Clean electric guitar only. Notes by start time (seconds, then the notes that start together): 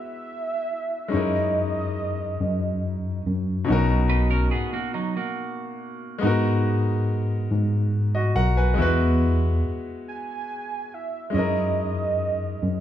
4.10 D#4 B4
4.31 C#4 A#4
4.51 B3 G#4
4.73 A#3 F#4
4.94 F#3 D#4
5.17 A#3 F#4